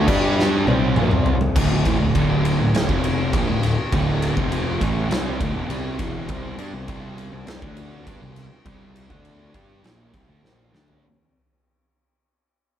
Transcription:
0.07 picked electric bass G2, distorted electric guitar G3 D4 G4, kick, crash
0.39 snare
0.66 picked electric bass C2, distorted electric guitar C3 G3 C4, high tom
0.96 picked electric bass A#1, distorted electric guitar A#2 F3, mid tom
1.11 picked electric bass C2, distorted electric guitar C3 G3, mid tom
1.26 floor tom
1.41 floor tom
1.55 picked electric bass D1, distorted electric guitar D2 A2 D3, kick, ride, crash
1.85 picked electric bass A1, distorted electric guitar A2 E3, kick, ride
1.99 picked electric bass D1, distorted electric guitar D2 A2
2.14 picked electric bass D1, distorted electric guitar D2 A2 D3, kick, ride
2.45 ride
2.59 picked electric bass D1, distorted electric guitar D2 A2
2.74 picked electric bass D1, distorted electric guitar D2 A2, snare, ride
2.89 picked electric bass F1, distorted electric guitar F2 C3 F3, kick
3.04 ride
3.33 picked electric bass A#1, distorted electric guitar A#2 F3, kick, ride
3.47 picked electric bass D1, distorted electric guitar D2 A2
3.63 snare, ride
3.92 picked electric bass D1, distorted electric guitar D2 A2 D3, kick, ride
4.22 ride
4.36 picked electric bass F1, distorted electric guitar F2 C3 F3, kick
4.52 ride
4.80 picked electric bass A1, distorted electric guitar A2 E3 A3, kick, ride
5.10 picked electric bass C2, distorted electric guitar C3 G3 C4, snare, ride
5.40 picked electric bass D1, distorted electric guitar D2 A2, kick, ride
5.54 picked electric bass E1, distorted electric guitar E2 B2
5.68 picked electric bass C2, distorted electric guitar C3 G3 C4, ride
5.98 picked electric bass E1, distorted electric guitar E2 B2 E3, kick, snare, ride
6.28 picked electric bass C2, distorted electric guitar C3 G3 C4, kick, ride
6.57 picked electric bass G2, distorted electric guitar G3 D4, ride
6.73 picked electric bass C2, distorted electric guitar C3 G3
6.88 picked electric bass C2, distorted electric guitar C3 G3 C4, kick, ride
7.18 ride
7.32 picked electric bass C2, distorted electric guitar C3 G3
7.47 picked electric bass C2, distorted electric guitar C3 G3, snare, ride
7.61 picked electric bass D2, distorted electric guitar D3 A3 D4, kick
7.77 ride
8.06 picked electric bass G2, distorted electric guitar G3 D4, kick, ride
8.21 picked electric bass C2, distorted electric guitar C3 G3
8.36 snare, ride
8.65 picked electric bass C2, distorted electric guitar C3 G3 C4, kick, ride
8.96 ride
9.09 picked electric bass D2, distorted electric guitar D3 A3 D4, kick
9.25 ride
9.54 picked electric bass G2, distorted electric guitar G3 D4 G4, kick, ride
9.82 picked electric bass A#1, distorted electric guitar A#2 F3 A#3, snare, ride
10.12 picked electric bass C2, distorted electric guitar C3 G3, kick, ride
10.27 picked electric bass D2, distorted electric guitar D3 A3
10.42 picked electric bass A#1, distorted electric guitar A#2 F3 A#3, snare
10.72 picked electric bass D2, distorted electric guitar D3 A3 D4, snare
10.88 floor tom

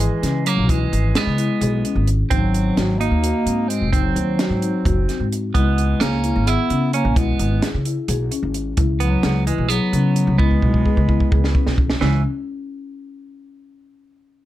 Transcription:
Already playing: bass clarinet E3, clean electric guitar G#3
0.00 marimba G#4, closed hi-hat
0.23 upright bass C#3, marimba C#4, snare, closed hi-hat
0.45 bass clarinet F#3, clean electric guitar A#3, closed hi-hat
0.57 upright bass B1
0.69 bass clarinet E3, clean electric guitar G#3, marimba E4, kick, closed hi-hat
0.93 upright bass G#1, closed hi-hat
1.15 bass clarinet G#3, clean electric guitar B3, marimba G#4, snare, closed hi-hat
1.27 upright bass C#3
1.38 marimba E4, closed hi-hat
1.61 upright bass B1, marimba G#4, closed hi-hat
1.85 marimba C#4, closed hi-hat
1.95 upright bass G#1
2.07 closed hi-hat
2.30 upright bass G#1, bass clarinet F#3, clean electric guitar C4, marimba D#4, kick, closed hi-hat
2.54 closed hi-hat
2.77 upright bass G#1, marimba F#4, snare, closed hi-hat
2.99 bass clarinet A#3, marimba D#4, clean electric guitar D#4, closed hi-hat
3.11 upright bass D#2
3.23 marimba F#4, closed hi-hat
3.46 upright bass G#2, marimba C4, closed hi-hat
3.68 bass clarinet G#3, clean electric guitar C4, closed hi-hat
3.81 upright bass F#1
3.92 bass clarinet F#3, clean electric guitar C4, marimba D#4, kick, closed hi-hat
4.16 upright bass D#2, closed hi-hat
4.39 marimba F#4, snare, closed hi-hat
4.50 upright bass G#2
4.62 marimba D#4, closed hi-hat
4.85 upright bass F#1, marimba F#4, kick, closed hi-hat
5.08 marimba C4, snare, closed hi-hat
5.20 upright bass G#2
5.32 closed hi-hat
5.54 upright bass C#2, bass clarinet G#3, clean electric guitar B3, marimba E4, kick, closed hi-hat
5.78 closed hi-hat
6.00 upright bass C#2, bass clarinet A#3, clean electric guitar C#4, marimba G#4, snare, closed hi-hat
6.24 marimba E4, closed hi-hat
6.36 upright bass G#1
6.46 bass clarinet B3, clean electric guitar E4, marimba G#4, closed hi-hat
6.70 upright bass C#3, marimba C#4, closed hi-hat
6.93 bass clarinet A#3, clean electric guitar C#4, closed hi-hat
7.05 upright bass B1
7.16 bass clarinet G#3, clean electric guitar B3, marimba E4, kick, closed hi-hat
7.39 upright bass G#1, closed hi-hat
7.62 marimba G#4, snare, closed hi-hat
7.74 upright bass C#3
7.85 marimba E4, closed hi-hat
8.08 upright bass B1, marimba G#4, closed hi-hat
8.31 marimba C#4, closed hi-hat
8.43 upright bass G#1
8.54 closed hi-hat
8.77 upright bass C#2, marimba E4, kick, closed hi-hat
9.00 bass clarinet F#3, clean electric guitar B3, closed hi-hat
9.23 upright bass C#2, marimba G#4, snare, closed hi-hat
9.47 bass clarinet E3, clean electric guitar G#3, marimba E4, closed hi-hat
9.58 upright bass B1
9.68 bass clarinet F#3, clean electric guitar B3, marimba G#4, closed hi-hat
9.93 upright bass C#3, marimba C#4, closed hi-hat
10.16 closed hi-hat
10.27 upright bass C#2
10.38 bass clarinet G#3, clean electric guitar B3, marimba E4, kick
10.51 kick
10.62 upright bass B1, kick
10.74 kick
10.85 marimba G#4, kick
10.97 upright bass C#3, kick
11.08 marimba E4, kick
11.20 kick
11.32 upright bass C#2, marimba G#4, kick
11.44 snare
11.54 marimba C#4, kick
11.67 upright bass B1, snare
11.78 kick
11.90 snare
12.01 upright bass C#2, clean electric guitar E3, marimba C#4, bass clarinet C#4, snare

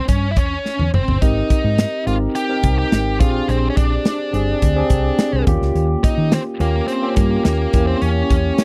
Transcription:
0.08 fingered electric bass G2, lead electric guitar C#4, kick, closed hi-hat
0.31 lead electric guitar E4
0.36 fingered electric bass E2, lead electric guitar C#4, kick, closed hi-hat
0.66 snare
0.79 fingered electric bass E2, high tom
0.94 fingered electric bass F1, lead electric guitar C4, mid tom
1.08 fingered electric bass G1, floor tom
1.22 fingered electric bass G#1, tine electric piano C4 D#4 G4 A#4, lead electric guitar D#4, kick, closed hi-hat
1.50 kick, closed hi-hat
1.64 fingered electric bass G#2
1.78 snare, closed hi-hat
2.07 fingered electric bass G#1, tine electric piano C4 D#4 G4 A#4, lead electric guitar F4, closed hi-hat
2.35 lead electric guitar G4, closed hi-hat
2.49 tine electric piano C4 D#4 G4 A#4
2.63 fingered electric bass C2, kick, closed hi-hat
2.78 lead electric guitar G4
2.92 fingered electric bass G#1, snare, closed hi-hat
3.20 fingered electric bass A#1, tine electric piano C4 D4 G4 G#4, lead electric guitar F4, kick, closed hi-hat
3.48 fingered electric bass A#1, lead electric guitar C4, closed hi-hat
3.70 lead electric guitar C#4
3.77 fingered electric bass A#1, lead electric guitar D4, kick, closed hi-hat
4.05 snare, closed hi-hat
4.33 fingered electric bass G1, tine electric piano C4 D4 G4 G#4, closed hi-hat
4.62 fingered electric bass D2, kick, closed hi-hat
4.76 tine electric piano C4 D4 G4 G#4
4.90 fingered electric bass C2, kick, closed hi-hat
5.19 snare, closed hi-hat
5.33 fingered electric bass C2
5.46 fingered electric bass D#2, tine electric piano A#3 C#4 F4 G4, kick, closed hi-hat
5.61 fingered electric bass C#2, snare
5.75 fingered electric bass D#2, closed hi-hat
6.04 lead electric guitar D#4, kick, closed hi-hat
6.18 fingered electric bass D#3
6.32 lead electric guitar C4, snare, closed hi-hat
6.60 fingered electric bass D#2, tine electric piano A#3 C#4 F4 G4, lead electric guitar A#3, closed hi-hat
6.88 lead electric guitar C4, closed hi-hat
7.02 tine electric piano A#3 C#4 F4 G4
7.16 fingered electric bass G2, lead electric guitar A#3, kick, closed hi-hat
7.44 fingered electric bass D#2, lead electric guitar A#3, snare, closed hi-hat
7.73 fingered electric bass E2, tine electric piano A#3 C#4 E4 G4, kick, closed hi-hat
7.87 lead electric guitar C4
8.01 fingered electric bass E2, lead electric guitar C#4, closed hi-hat
8.30 fingered electric bass E2, kick, closed hi-hat
8.58 snare, closed hi-hat

